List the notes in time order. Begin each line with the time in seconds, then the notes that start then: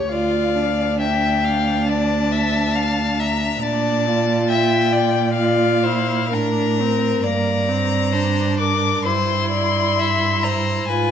Already playing: G4 C#5
0.10 D2 F4 D5 F5
0.55 D4
1.00 E5 G5
1.44 F5
1.88 D5 A5
2.32 E5
2.76 F5
3.19 E5 A#5
3.63 A#2 D4 D5 A5
4.07 F4
4.49 E5 G5
4.93 D5
5.34 F4 D5 F5
5.83 E4 C5
6.32 A2 D4 A#4 A#5
6.80 C4
7.23 G2 A#3 D5 A#5
7.69 C4
8.12 D4 C5
8.59 A#4 D6
9.05 G2 E4 C5 C6
9.51 D5
9.99 E5
10.43 C5 A#5
10.88 G#2 F4 B4 G#5